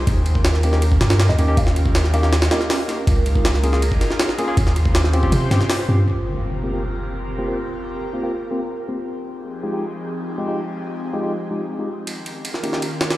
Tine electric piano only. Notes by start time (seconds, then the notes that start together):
0.64 A#3 C#4 D#4 G4
0.73 A#3 C#4 D#4 G4
1.39 A#3 C#4 D#4 G4
1.48 A#3 C#4 D#4 G4
2.14 A#3 C#4 D#4 G4
2.23 A#3 C#4 D#4 G4
2.51 A#3 C#4 D#4 G4
2.88 A#3 C#4 D#4 G4
3.63 A#3 C#4 F4 G#4
3.73 A#3 C#4 F4 G#4
4.38 A#3 C#4 F4 G#4
4.48 A#3 C#4 F4 G#4
5.13 C4 C#4 F4 G4
5.23 C4 C#4 F4 G4
5.51 C4 C#4 F4 G4
5.89 C4 C#4 F4 G4
6.64 A#3 C4 F4 G4
6.73 A#3 C4 F4 G4
7.39 A#3 C4 F4 G4
7.48 A#3 C4 F4 G4
8.14 A#3 C4 F4 G4
8.23 A#3 C4 F4 G4
8.51 A#3 C4 F4 G4
8.89 A#3 C4 F4 G4
9.63 G#3 D#4 F4 G4
9.73 G#3 D#4 F4 G4
10.38 G#3 D#4 F4 G4
10.48 G#3 D#4 F4 G4
11.13 G#3 D#4 F4 G4
11.23 G#3 D#4 F4 G4
11.51 G#3 D#4 F4 G4
11.79 G#3 D#4 F4 G4
12.63 A#3 C#4 D#4 G4
12.73 A#3 C#4 D#4 G4